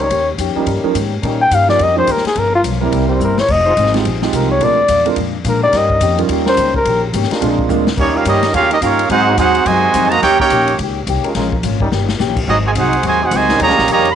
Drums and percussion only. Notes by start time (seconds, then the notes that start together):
0.10 kick, ride
0.38 kick, hi-hat pedal, ride
0.67 kick, ride
0.95 kick, hi-hat pedal, ride
1.23 kick, ride
1.51 kick, hi-hat pedal, ride
1.69 snare
1.79 kick, ride
2.07 kick, hi-hat pedal, ride
2.17 snare
2.25 snare, ride
2.35 kick, ride
2.64 kick, hi-hat pedal, ride
2.92 kick, ride
3.21 hi-hat pedal
3.38 snare
3.48 kick, crash
3.77 kick, hi-hat pedal, ride
3.86 snare
3.94 snare, ride
4.05 kick, ride
4.22 snare
4.33 kick, hi-hat pedal, ride
4.61 kick, ride
4.88 kick, hi-hat pedal, ride
5.06 ride
5.16 kick, ride
5.45 kick, hi-hat pedal, ride
5.73 kick, snare, ride
5.90 kick
6.01 kick, hi-hat pedal, ride
6.18 ride
6.29 kick, ride
6.46 snare
6.57 kick, hi-hat pedal, ride
6.74 kick
6.85 ride
7.13 kick, hi-hat pedal, ride
7.23 snare
7.31 snare, ride
7.41 kick, ride
7.59 kick
7.70 hi-hat pedal
7.87 snare
7.97 kick, crash
8.25 kick, hi-hat pedal, ride
8.43 snare, ride
8.54 kick, ride
8.71 ride
8.82 kick, hi-hat pedal, ride
8.99 ride
9.10 kick, ride
9.38 kick, hi-hat pedal, ride
9.55 ride
9.66 kick, ride
9.94 kick, hi-hat pedal, ride
10.12 ride
10.22 kick, snare, ride
10.40 kick
10.50 kick, hi-hat pedal, ride
10.68 ride
10.79 kick, ride
11.07 kick, hi-hat pedal, ride
11.24 ride
11.35 kick, snare, ride
11.52 kick
11.63 kick, hi-hat pedal, ride
11.80 kick
11.92 snare
12.09 snare
12.20 snare, hi-hat pedal
12.36 kick, crash
12.47 kick
12.75 kick, hi-hat pedal, ride
12.93 ride
13.03 kick, ride
13.31 kick, hi-hat pedal, ride
13.49 snare
13.60 kick, ride
13.70 snare
13.78 snare
13.88 kick, hi-hat pedal, ride
14.05 ride